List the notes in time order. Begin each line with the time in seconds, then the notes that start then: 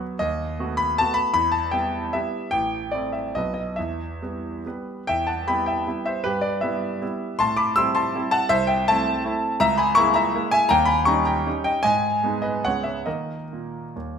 Already playing: F#3 B3 F#4
0.19 D#2 D#5
0.59 A3 B3 F#4
0.77 B5
0.98 A3 B3 F#4 A5
1.14 B5
1.34 E2 B5
1.52 A5
1.71 G3 B3 E4 G5
2.13 G3 B3 E4 E5
2.51 A1 G5
2.91 A3 C4 E4 D5
3.12 E5
3.35 B1 F#3 B3 B4 D#5
3.54 D#5
3.76 E2 E5
4.22 G3 B3 B4
4.66 G3 B3 B4
5.07 E2 E5 G5
5.27 F#5 A5
5.47 G3 B3 E4 G5 B5
5.66 E5 G5
5.87 G3 B3 E4
6.06 C5 E5
6.24 G2 G4 B4
6.41 B4 D5
6.61 G3 B3 E4 B4 E5
7.02 G3 B3 E4
7.39 A2 A5 C6
7.57 B5 D6
7.76 G3 C4 E4 C6 E6
7.95 A5 C6
8.15 G3 C4 E4
8.31 F#5 A5
8.49 C2 C5 E5
8.67 E5 G5
8.88 A3 C4 E4 E5 A5
9.24 A3 C4 E4
9.60 C#2 E5 A#5
9.77 G#5 B5
9.95 G#3 A#3 E4 A#5 C#6
10.14 E5 A#5
10.35 G#3 A#3 E4
10.51 E5 G#5
10.69 D#2 G5 A#5
10.85 G#5 B5
11.05 G3 C#4 D#4 A#5 C#6
11.25 G5 A#5
11.47 G3 C#4 D#4
11.64 D#5 G5
11.83 G#2 D#5 G#5
12.23 G#3 B3 D#4
12.42 B4 D#5
12.65 C#2 G#3 B3 C#4 C#5 F#5
12.84 C#5 E5
13.06 D#3 A#3 A#4 D#5
13.53 A#2
13.96 D#2